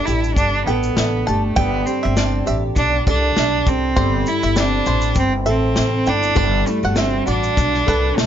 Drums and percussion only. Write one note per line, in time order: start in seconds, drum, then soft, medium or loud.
0.07 shaker medium
0.24 shaker medium
0.36 kick medium
0.36 shaker medium
0.68 shaker soft
0.83 shaker soft
0.97 snare loud
0.97 shaker medium
1.28 shaker soft
1.56 kick loud
1.56 shaker medium
1.87 shaker medium
2.17 snare loud
2.17 shaker medium
2.47 shaker medium
2.76 kick medium
2.76 shaker medium
3.07 kick loud
3.07 shaker soft
3.37 snare loud
3.37 shaker medium
3.67 kick medium
3.67 shaker medium
3.96 kick loud
3.96 shaker medium
4.27 shaker medium
4.43 shaker medium
4.56 snare loud
4.56 shaker medium
4.86 shaker medium
5.01 shaker medium
5.15 kick medium
5.15 shaker medium
5.46 shaker soft
5.76 snare loud
5.76 shaker medium
6.06 shaker soft
6.23 shaker soft
6.36 kick loud
6.36 shaker medium
6.66 shaker medium
6.96 snare loud
6.96 shaker medium
7.27 shaker medium
7.43 shaker medium
7.57 kick medium
7.57 shaker medium
7.74 snare soft
7.88 kick medium
7.88 shaker soft
8.18 snare loud
8.18 shaker medium